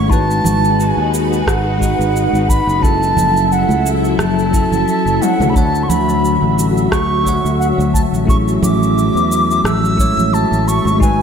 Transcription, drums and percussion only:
0.11 kick, cabasa
0.31 cabasa
0.45 low conga, cabasa
0.65 cabasa
0.80 cabasa
1.14 cabasa
1.33 cabasa
1.47 kick, cross-stick, cabasa
1.81 kick, cabasa
2.01 cabasa
2.16 cabasa
2.35 cabasa
2.49 kick, cabasa
2.69 cabasa
2.83 kick, cabasa
3.03 cabasa
3.17 low conga, cabasa
3.37 cabasa
3.52 cabasa
3.69 high conga, cabasa
3.86 cabasa
4.04 cabasa
4.19 cross-stick, low conga, cabasa
4.39 cabasa
4.54 kick, cabasa
4.72 low conga, cabasa
4.88 cabasa
5.07 cabasa
5.22 high tom, cabasa
5.40 mid tom, high conga, cabasa
5.56 kick, cabasa
5.75 cabasa
5.90 low conga, cabasa
6.09 cabasa
6.25 cabasa
6.59 cabasa
6.78 cabasa
6.92 kick, cross-stick, cabasa
7.26 kick, cabasa
7.46 cabasa
7.62 cabasa
7.80 cabasa
7.94 kick, cabasa
8.14 cabasa
8.28 kick, cabasa
8.48 cabasa
8.63 low conga, cabasa
8.83 cabasa
8.98 cabasa
9.17 cabasa
9.32 cabasa
9.51 cabasa
9.65 cross-stick, low conga, cabasa
9.85 cabasa
9.99 kick, cabasa
10.17 low conga, cabasa
10.34 cabasa
10.53 cabasa
10.68 cabasa
10.85 high conga, cabasa
11.01 kick, cabasa

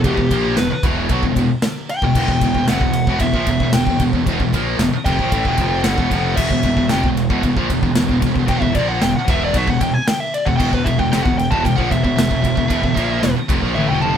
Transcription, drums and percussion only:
0.04 kick, ride
0.17 kick
0.31 kick, ride
0.57 snare, ride
0.83 kick, ride
1.09 kick, ride
1.23 kick
1.36 kick, ride
1.62 snare, ride
1.89 ride
2.02 kick
2.15 kick, crash
2.28 kick
2.41 kick, ride
2.55 kick
2.68 snare, ride
2.81 kick
2.93 snare, ride
3.07 kick
3.20 kick, ride
3.34 kick
3.47 kick, ride
3.60 kick
3.73 snare, ride
3.87 kick
4.00 kick, ride
4.13 kick
4.26 kick, ride
4.40 kick
4.53 kick, ride
4.79 snare, ride
5.06 kick, ride
5.19 kick
5.32 kick, ride
5.45 kick
5.58 kick, ride
5.84 snare, ride
5.98 kick
6.11 kick, ride
6.37 kick, crash
6.50 kick
6.63 kick, ride
6.77 kick
6.89 snare, ride
7.04 kick
7.17 snare, ride
7.30 kick
7.43 kick, ride
7.57 kick
7.70 kick, ride
7.83 kick
7.95 snare, ride
8.09 kick
8.22 kick, ride
8.36 kick
8.48 kick, ride
8.62 kick
8.75 kick, ride
9.02 snare, ride
9.28 kick, ride
9.54 kick, ride
9.68 kick
9.81 kick, ride
10.08 snare, ride
10.34 ride
10.47 kick
10.60 kick, crash
10.73 kick
10.86 kick, ride
10.99 kick
11.13 snare, ride
11.26 kick
11.39 snare, ride
11.52 kick
11.65 kick, ride
11.78 kick
11.91 kick, ride
12.04 kick
12.19 snare, ride
12.31 kick
12.44 kick, ride
12.57 kick
12.70 kick, ride
12.83 kick
12.97 kick, ride
13.23 snare, ride
13.49 kick, ride
13.76 high tom
14.02 mid tom

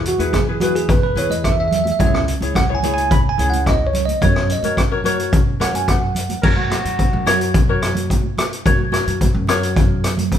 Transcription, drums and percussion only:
0.05 closed hi-hat
0.18 closed hi-hat, high conga
0.33 kick, cross-stick, closed hi-hat, low conga
0.60 closed hi-hat, high conga, low conga
0.76 closed hi-hat
0.89 kick, closed hi-hat
1.17 closed hi-hat
1.30 closed hi-hat, high conga
1.44 kick, cross-stick, closed hi-hat
1.71 closed hi-hat, low conga
1.85 closed hi-hat, high conga
1.99 kick, closed hi-hat, low conga
2.14 cross-stick
2.28 closed hi-hat
2.41 closed hi-hat, high conga
2.54 kick, cross-stick, closed hi-hat, low conga
2.83 closed hi-hat, high conga, low conga
2.98 closed hi-hat
3.11 kick, closed hi-hat
3.39 closed hi-hat
3.52 closed hi-hat, high conga
3.66 kick, cross-stick, closed hi-hat
3.93 closed hi-hat, low conga
4.08 closed hi-hat, high conga
4.21 kick, closed hi-hat, low conga
4.36 cross-stick
4.49 closed hi-hat
4.63 closed hi-hat, high conga
4.77 kick, cross-stick, closed hi-hat
5.04 closed hi-hat, high conga, low conga
5.19 closed hi-hat
5.33 kick, closed hi-hat
5.61 cross-stick, closed hi-hat
5.74 closed hi-hat, high conga
5.88 kick, cross-stick, closed hi-hat
6.15 closed hi-hat, low conga
6.29 closed hi-hat, high conga
6.43 kick, crash
6.57 high conga
6.71 cross-stick, closed hi-hat, high conga
6.85 closed hi-hat
6.99 kick, closed hi-hat
7.26 cross-stick, closed hi-hat, low conga
7.41 closed hi-hat
7.54 kick, closed hi-hat
7.82 cross-stick, closed hi-hat
7.95 closed hi-hat, high conga, low conga
8.10 kick, closed hi-hat
8.23 high conga
8.38 cross-stick, closed hi-hat, low conga
8.53 closed hi-hat
8.66 kick, closed hi-hat
8.79 high conga
8.92 cross-stick, closed hi-hat, high conga
9.07 closed hi-hat
9.21 kick, closed hi-hat
9.47 cross-stick, closed hi-hat, low conga
9.63 closed hi-hat
9.76 kick, closed hi-hat
10.04 cross-stick, closed hi-hat
10.18 closed hi-hat, high conga, low conga
10.32 kick, closed hi-hat

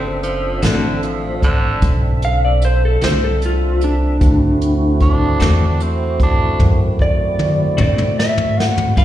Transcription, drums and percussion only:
0.23 closed hi-hat
0.62 snare, closed hi-hat
1.03 closed hi-hat
1.42 kick, closed hi-hat
1.82 kick, closed hi-hat
2.22 closed hi-hat
2.62 closed hi-hat
3.01 snare, closed hi-hat
3.42 closed hi-hat
3.81 closed hi-hat
4.21 kick, closed hi-hat
4.61 closed hi-hat
5.00 kick, closed hi-hat
5.40 snare, closed hi-hat
5.80 closed hi-hat
6.20 kick, closed hi-hat
6.60 kick, high tom
6.99 kick
7.39 mid tom
7.78 mid tom
7.98 mid tom
8.20 snare
8.38 floor tom
8.60 snare
8.78 floor tom
8.97 kick, closed hi-hat

